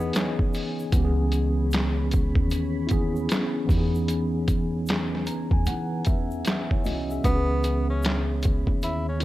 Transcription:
0.00 0.50 E3 medium
0.00 0.36 B3 medium
0.00 0.51 B3 medium
0.00 9.24 C#4 medium
0.00 0.52 D#4 medium
0.00 0.53 G#4 medium
0.00 0.91 D#5 medium
0.00 0.90 G#5 medium
0.00 shaker soft
0.13 0.90 C#5 medium
0.13 snare loud
0.13 clap medium
0.13 closed hi-hat medium
0.13 shaker medium
0.39 kick medium
0.54 open hi-hat soft
0.54 shaker soft
0.79 shaker soft
0.92 2.33 C#2 loud
0.92 1.99 E3 medium
0.92 2.00 B3 medium
0.92 3.66 C#5 medium
0.92 3.66 B5 loud
0.92 kick loud
0.92 closed hi-hat medium
0.92 shaker medium
0.96 2.01 C#4 medium
0.96 1.04 G4 medium
1.04 2.05 G#4 loud
1.32 closed hi-hat medium
1.32 shaker soft
1.71 snare loud
1.71 closed hi-hat medium
1.71 shaker medium
1.76 clap medium
2.11 kick medium
2.11 closed hi-hat medium
2.11 shaker soft
2.35 3.25 D#2 medium
2.35 kick medium
2.50 closed hi-hat medium
2.50 shaker medium
2.87 3.66 B3 medium
2.87 3.68 C#4 medium
2.87 3.66 E4 medium
2.87 closed hi-hat medium
2.87 shaker soft
2.91 3.69 G#4 loud
2.91 kick medium
3.16 shaker soft
3.29 snare loud
3.29 clap medium
3.29 closed hi-hat medium
3.29 shaker medium
3.65 4.96 E3 medium
3.65 4.96 B3 medium
3.65 4.97 D#4 medium
3.65 7.21 B4 medium
3.65 7.20 G#5 medium
3.65 kick loud
3.69 5.28 E2 medium
3.69 3.78 G4 medium
3.69 open hi-hat soft
3.69 shaker soft
3.77 5.02 G#4 medium
3.95 shaker soft
4.08 closed hi-hat medium
4.08 shaker medium
4.48 kick medium
4.48 closed hi-hat medium
4.48 shaker medium
4.86 snare loud
4.86 closed hi-hat medium
4.86 shaker medium
4.91 clap medium
5.15 snare soft
5.26 5.50 A#5 medium
5.26 closed hi-hat medium
5.26 shaker soft
5.51 5.64 E2 medium
5.51 5.66 G#5 medium
5.51 kick medium
5.66 6.01 E3 loud
5.66 6.03 F#5 medium
5.66 closed hi-hat medium
5.66 shaker medium
6.05 6.41 E2 medium
6.05 6.43 E5 medium
6.05 kick medium
6.05 closed hi-hat medium
6.05 shaker soft
6.31 shaker soft
6.45 7.10 E5 medium
6.45 snare loud
6.45 clap medium
6.45 closed hi-hat medium
6.45 shaker medium
6.71 6.83 E2 medium
6.71 6.85 E4 medium
6.71 6.85 C#5 medium
6.71 kick medium
6.84 7.20 C2 medium
6.84 7.09 F#4 medium
6.84 7.09 D#5 medium
6.84 open hi-hat soft
6.84 shaker soft
7.10 7.34 G#4 soft
7.10 7.48 E5 medium
7.10 shaker medium
7.23 8.64 C#2 loud
7.23 8.31 E3 medium
7.23 8.31 B3 medium
7.23 7.85 B3 loud
7.23 8.32 C#4 medium
7.23 9.24 C#5 medium
7.23 9.24 B5 medium
7.23 kick loud
7.23 closed hi-hat medium
7.23 shaker medium
7.29 7.35 F#4 medium
7.35 8.37 G#4 medium
7.64 closed hi-hat medium
7.64 shaker medium
7.90 8.25 C#4 medium
8.02 snare loud
8.02 closed hi-hat medium
8.02 shaker medium
8.07 clap medium
8.43 kick medium
8.43 closed hi-hat medium
8.43 shaker medium
8.67 9.24 D#2 medium
8.67 kick medium
8.82 9.06 E4 medium
8.82 closed hi-hat medium
8.82 shaker medium
9.08 9.21 C#4 medium
9.20 9.24 E4 medium
9.20 closed hi-hat medium

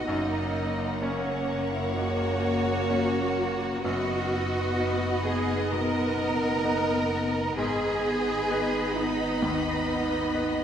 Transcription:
0.00 0.08 F#2 medium
0.00 0.11 B3 soft
0.00 0.10 D#4 soft
0.00 0.10 B4 soft
0.00 0.99 D#5 medium
0.07 3.80 F#1 medium
0.07 0.99 F#2 medium
0.07 3.80 A#3 medium
0.07 3.66 A#3 medium
0.07 3.66 C#4 medium
0.07 1.00 D#4 medium
0.07 3.80 F#5 medium
1.02 1.92 A#3 soft
1.02 1.73 C#4 medium
1.02 1.92 C#4 soft
1.02 3.84 C#5 medium
1.02 1.92 C#5 medium
1.73 1.96 E4 medium
1.95 2.87 C#2 medium
1.95 3.82 F#4 medium
2.89 3.80 A#3 soft
2.89 3.80 C#4 soft
2.89 3.80 C#5 soft
3.83 7.54 F#1 medium
3.83 4.76 F#2 medium
3.83 7.54 B3 medium
3.83 7.57 B3 medium
3.83 7.54 D#4 medium
3.83 5.22 F#4 loud
3.83 7.54 D#5 medium
3.83 7.54 F#5 medium
4.79 5.68 B3 soft
4.79 5.68 D#4 soft
4.79 5.68 B4 medium
5.25 5.71 G#4 medium
5.71 6.62 B2 medium
5.71 7.58 A#4 medium
6.64 7.54 B3 soft
6.64 7.54 D#4 soft
6.64 7.54 D#5 soft
7.57 10.64 G#1 medium
7.57 8.47 G#2 medium
7.57 10.64 B3 medium
7.57 10.64 D#4 medium
7.57 8.93 G#4 loud
7.57 10.64 D#5 medium
7.57 10.64 B5 medium
8.50 9.38 B3 soft
8.50 9.38 D#4 soft
8.50 9.39 B4 medium
8.97 10.64 D#4 medium
9.42 10.31 D#2 soft
10.34 10.64 B3 soft
10.34 10.64 D#4 soft
10.34 10.64 B4 medium

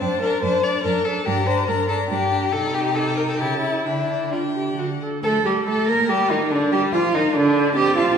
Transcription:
0.00 0.36 F#2 medium
0.00 0.21 D4 soft
0.00 0.21 C5 medium
0.00 0.21 A5 medium
0.21 0.42 D4 soft
0.21 0.43 A#4 medium
0.21 0.42 A5 soft
0.42 0.78 F#2 medium
0.42 0.63 D4 soft
0.42 0.65 C5 medium
0.42 0.63 A5 medium
0.63 0.83 D4 soft
0.63 0.84 D5 medium
0.63 0.83 A5 soft
0.84 1.19 F#2 medium
0.84 1.05 D4 soft
0.84 1.06 A#4 medium
0.84 1.04 A5 soft
1.04 1.25 D4 medium
1.04 1.27 A4 medium
1.04 1.25 A5 soft
1.25 1.62 G2 medium
1.25 1.45 D4 medium
1.25 1.48 G4 medium
1.25 1.46 A#5 medium
1.46 1.67 D4 soft
1.46 1.70 C5 medium
1.46 1.67 A#5 soft
1.68 2.03 G2 medium
1.68 1.88 D4 soft
1.68 1.88 A#4 medium
1.68 1.88 A#5 medium
1.89 2.09 D4 soft
1.89 1.97 A4 medium
1.89 2.09 A#5 medium
2.09 2.46 G2 medium
2.09 2.30 D4 medium
2.09 2.54 G4 medium
2.09 2.30 A#5 soft
2.30 2.52 D4 soft
2.30 2.52 A#5 soft
2.52 3.42 C3 medium
2.52 3.42 D#4 medium
2.52 2.75 A4 medium
2.52 3.41 G5 medium
2.74 2.97 G4 medium
2.95 3.16 A4 medium
3.17 3.21 A#4 medium
3.28 3.39 A4 medium
3.40 3.86 C#3 soft
3.40 3.87 E4 soft
3.40 3.61 G4 medium
3.40 3.85 A5 soft
3.61 3.84 E4 medium
3.85 4.77 D3 soft
3.85 4.31 D4 soft
3.85 4.33 E4 medium
3.85 4.31 G5 soft
4.31 5.01 D4 soft
4.31 4.40 F4 soft
4.31 4.80 G5 soft
4.55 4.78 G4 soft
4.78 5.02 D3 soft
4.78 4.86 F#4 soft
4.78 5.03 F#5 soft
5.02 5.23 A4 soft
5.23 5.44 A3 medium
5.23 5.44 A4 medium
5.23 5.31 A4 medium
5.23 5.47 A4 medium
5.45 5.69 G3 medium
5.45 5.53 G4 soft
5.45 5.66 G4 medium
5.45 5.54 G4 soft
5.67 5.89 A3 medium
5.67 5.88 A4 medium
5.67 5.91 A4 medium
5.67 5.90 A4 medium
5.88 6.11 A#3 medium
5.88 6.11 A#4 medium
5.88 6.09 A#4 medium
6.09 6.32 G3 medium
6.09 6.32 G4 medium
6.09 6.33 G4 medium
6.09 6.30 G4 medium
6.31 6.53 D#3 medium
6.31 6.39 D#4 medium
6.31 6.53 D#4 medium
6.31 6.52 D#4 medium
6.51 6.74 D3 medium
6.51 6.74 D4 medium
6.51 6.72 D4 medium
6.72 6.94 G3 medium
6.72 6.80 G4 medium
6.72 6.92 G4 medium
6.72 6.80 G4 medium
6.92 7.14 F3 medium
6.92 7.01 F4 medium
6.92 7.13 F4 medium
6.92 7.16 F4 medium
7.14 7.22 D#3 medium
7.14 7.22 D#4 medium
7.14 7.36 D#4 medium
7.14 7.37 D#4 medium
7.34 7.76 D3 medium
7.34 7.75 D4 medium
7.34 7.76 D4 medium
7.76 8.18 C4 medium
7.76 7.97 G4 medium
7.76 7.88 D#5 medium
7.76 8.18 A5 medium
7.87 7.98 G5 soft
7.96 8.18 F4 medium
7.96 8.09 A5 medium
8.08 8.18 C6 medium

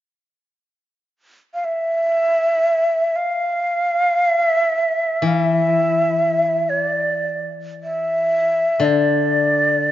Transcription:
1.54 1.66 F5 soft
1.64 3.17 E5 medium
3.16 4.38 F5 medium
4.38 5.28 E5 medium
5.22 8.60 E3 soft
5.27 5.40 F5 medium
5.40 6.71 E5 medium
6.69 7.50 D5 medium
7.83 8.86 E5 medium
8.80 9.92 D3 soft
8.85 9.92 D5 medium

